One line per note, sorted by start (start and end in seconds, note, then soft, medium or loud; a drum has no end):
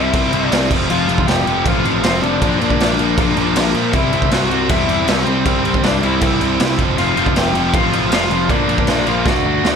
0.00 0.13 C2 medium
0.00 0.12 C3 medium
0.00 0.13 G3 medium
0.00 0.14 C4 loud
0.00 0.67 E4 medium
0.00 0.48 E5 loud
0.13 0.32 C2 medium
0.13 0.31 C3 medium
0.13 0.32 G3 loud
0.13 0.33 C4 loud
0.13 kick loud
0.13 crash medium
0.33 0.51 C2 medium
0.33 0.51 C3 medium
0.33 0.51 G3 medium
0.33 0.52 C4 medium
0.33 crash medium
0.48 0.70 C2 medium
0.48 0.67 D5 loud
0.52 0.70 C3 medium
0.52 0.70 G3 loud
0.52 0.70 C4 loud
0.52 snare loud
0.52 crash loud
0.71 0.89 F1 medium
0.71 0.88 F2 loud
0.71 0.89 C3 loud
0.71 0.90 F3 loud
0.71 kick loud
0.71 crash loud
0.89 1.08 F1 medium
0.89 1.07 F2 loud
0.89 1.08 C3 loud
0.89 1.09 F3 loud
0.89 1.25 F4 medium
0.89 1.29 F5 loud
0.89 crash medium
1.08 1.27 F1 medium
1.08 1.27 F2 medium
1.08 1.27 C3 medium
1.08 1.29 F3 medium
1.08 crash medium
1.18 kick loud
1.27 1.46 F1 medium
1.27 1.45 F2 medium
1.27 1.46 C3 medium
1.27 1.47 F3 medium
1.27 1.63 G4 medium
1.27 1.67 G5 loud
1.27 snare loud
1.27 crash medium
1.46 1.65 F1 medium
1.46 1.64 F2 medium
1.46 1.65 C3 medium
1.46 1.66 F3 loud
1.46 crash medium
1.65 2.02 A1 loud
1.65 1.83 F2 medium
1.65 1.83 C3 loud
1.65 1.84 F3 loud
1.65 2.01 F4 medium
1.65 2.05 F5 medium
1.65 kick loud
1.65 crash medium
1.84 2.02 F2 loud
1.84 2.03 C3 loud
1.84 2.04 F3 loud
1.84 crash medium
2.03 2.22 F1 medium
2.03 2.21 F2 medium
2.03 2.21 C3 loud
2.03 2.22 F3 loud
2.03 2.21 C4 medium
2.03 2.22 C5 medium
2.03 snare loud
2.03 crash medium
2.22 2.41 F1 medium
2.22 2.40 F2 loud
2.22 2.40 C3 medium
2.22 2.41 F3 loud
2.22 2.58 D4 medium
2.22 2.58 D5 loud
2.22 crash medium
2.41 2.60 A#1 loud
2.41 2.59 A#2 loud
2.41 2.60 F3 loud
2.41 2.60 A#3 loud
2.41 kick loud
2.41 crash medium
2.59 2.79 A#2 medium
2.59 2.79 F3 medium
2.59 2.80 A#3 medium
2.59 3.70 D4 medium
2.59 3.70 D5 loud
2.59 crash medium
2.70 kick medium
2.80 2.98 A#1 medium
2.80 2.97 A#2 medium
2.80 2.98 F3 medium
2.80 2.98 A#3 medium
2.80 snare loud
2.80 crash medium
2.98 3.17 A#1 medium
2.98 3.16 A#2 medium
2.98 3.17 F3 medium
2.98 3.17 A#3 loud
2.98 crash medium
3.17 3.36 A#1 medium
3.17 3.36 A#2 loud
3.17 3.36 F3 loud
3.17 3.37 A#3 loud
3.17 kick loud
3.17 crash medium
3.37 3.55 A#1 medium
3.37 3.55 A#2 medium
3.37 3.56 F3 medium
3.37 3.56 A#3 loud
3.37 crash medium
3.56 3.74 A#1 medium
3.56 3.74 A#2 medium
3.56 3.74 F3 medium
3.56 3.75 A#3 loud
3.56 snare loud
3.56 crash loud
3.74 3.92 A#2 medium
3.74 3.93 A#2 medium
3.74 3.93 F3 loud
3.74 3.93 A#3 loud
3.74 crash medium
3.93 4.12 C2 medium
3.93 4.13 C3 medium
3.93 4.13 G3 loud
3.93 4.13 C4 loud
3.93 4.29 E4 medium
3.93 4.32 E5 loud
3.93 kick loud
3.93 crash medium
4.13 4.31 C2 medium
4.13 4.31 C3 medium
4.13 4.32 G3 medium
4.13 4.32 C4 medium
4.13 crash medium
4.22 kick medium
4.31 4.50 C2 medium
4.31 4.49 C3 medium
4.31 4.49 G3 medium
4.31 4.50 C4 medium
4.31 4.67 F#4 medium
4.31 4.70 F#5 medium
4.31 snare loud
4.31 crash medium
4.50 4.68 C2 medium
4.50 4.68 C3 medium
4.50 4.69 G3 medium
4.50 4.70 C4 loud
4.50 crash medium
4.69 5.06 E2 loud
4.69 4.87 C3 medium
4.69 4.88 G3 loud
4.69 4.89 C4 loud
4.69 5.05 E4 medium
4.69 5.09 E5 loud
4.69 kick loud
4.69 crash medium
4.88 5.04 C3 loud
4.88 5.05 G3 medium
4.88 5.07 C4 loud
4.88 crash medium
5.06 5.26 C2 medium
5.06 5.25 C3 medium
5.06 5.25 G3 medium
5.06 5.27 C4 loud
5.06 5.43 C4 medium
5.06 5.45 C5 medium
5.06 snare loud
5.06 crash medium
5.26 5.45 C2 medium
5.26 5.44 C3 medium
5.26 5.44 G3 loud
5.26 5.45 C4 loud
5.26 crash medium
5.45 5.64 C2 loud
5.45 5.63 C3 medium
5.45 5.64 G3 loud
5.45 5.65 C4 loud
5.45 5.81 C4 medium
5.45 5.84 C5 medium
5.45 kick loud
5.45 crash medium
5.64 5.82 C3 medium
5.64 5.83 C3 medium
5.64 5.83 G3 loud
5.64 5.84 C4 medium
5.64 crash medium
5.74 kick medium
5.83 6.02 C2 loud
5.83 6.01 C3 medium
5.83 6.02 G3 loud
5.83 6.03 C4 medium
5.83 6.01 D4 medium
5.83 6.04 D5 medium
5.83 snare loud
5.83 crash medium
6.02 6.21 C2 medium
6.02 6.19 C3 medium
6.02 6.20 G3 loud
6.02 6.21 C4 loud
6.02 6.75 E4 medium
6.02 6.79 E5 loud
6.02 crash medium
6.20 6.40 C2 medium
6.20 6.38 C3 loud
6.20 6.39 G3 loud
6.20 6.39 C4 loud
6.20 kick loud
6.20 crash medium
6.39 6.59 C2 medium
6.39 6.57 C3 loud
6.39 6.58 G3 loud
6.39 6.59 C4 loud
6.39 crash medium
6.59 6.78 C2 medium
6.59 6.77 C3 medium
6.59 6.78 G3 loud
6.59 6.78 C4 loud
6.59 snare loud
6.59 crash loud
6.77 6.97 F1 medium
6.77 6.96 F2 loud
6.77 6.96 C3 loud
6.77 6.97 F3 loud
6.77 kick loud
6.77 crash medium
6.97 7.16 F1 medium
6.97 7.15 F2 medium
6.97 7.16 C3 loud
6.97 7.16 F3 loud
6.97 7.33 F4 medium
6.97 7.37 F5 medium
6.97 crash medium
7.16 7.35 F1 medium
7.16 7.33 F2 medium
7.16 7.34 C3 medium
7.16 7.35 F3 loud
7.16 crash medium
7.26 kick medium
7.34 7.54 F1 loud
7.34 7.52 F2 medium
7.34 7.53 C3 medium
7.34 7.54 F3 medium
7.34 7.72 G4 medium
7.34 7.75 G5 medium
7.34 snare loud
7.34 crash medium
7.54 7.73 F1 medium
7.54 7.73 F2 medium
7.54 7.73 C3 medium
7.54 7.74 F3 medium
7.54 crash medium
7.74 8.10 A1 loud
7.74 7.91 F2 loud
7.74 7.92 C3 loud
7.74 7.93 F3 loud
7.74 8.09 F4 medium
7.74 8.12 F5 medium
7.74 kick loud
7.74 crash loud
7.92 8.10 F2 medium
7.92 8.11 C3 loud
7.92 8.11 F3 loud
7.92 crash medium
8.12 8.30 F1 medium
8.12 8.29 F2 medium
8.12 8.30 C3 medium
8.12 8.31 F3 loud
8.12 8.48 F4 medium
8.12 8.50 F5 medium
8.12 snare loud
8.12 crash loud
8.30 8.48 F1 medium
8.30 8.49 F2 medium
8.30 8.49 C3 loud
8.30 8.49 F3 loud
8.30 crash medium
8.49 8.68 A#1 loud
8.49 8.67 A#2 loud
8.49 8.67 F3 loud
8.49 8.68 A#3 loud
8.49 9.03 D4 medium
8.49 9.09 D5 loud
8.49 kick loud
8.49 crash medium
8.68 8.86 A#2 medium
8.68 8.87 A#2 medium
8.68 8.87 F3 medium
8.68 8.87 A#3 loud
8.68 crash medium
8.78 kick medium
8.87 9.06 A#1 medium
8.87 9.05 A#2 medium
8.87 9.05 F3 medium
8.87 9.06 A#3 medium
8.87 snare loud
8.87 crash medium
9.06 9.25 A#1 medium
9.06 9.24 A#2 medium
9.06 9.24 F3 medium
9.06 9.25 A#3 loud
9.06 9.25 F4 medium
9.06 9.27 F5 loud
9.06 crash medium
9.25 9.44 D2 medium
9.25 9.43 D3 loud
9.25 9.44 A3 loud
9.25 9.44 D4 loud
9.25 9.76 F#4 medium
9.25 9.76 F#5 medium
9.25 kick loud
9.25 snare medium
9.44 9.63 D2 medium
9.44 9.62 D3 medium
9.44 9.62 A3 medium
9.44 9.63 D4 loud
9.63 9.76 D2 medium
9.63 9.76 D3 medium
9.63 9.76 A3 medium
9.63 9.76 D4 loud
9.63 snare loud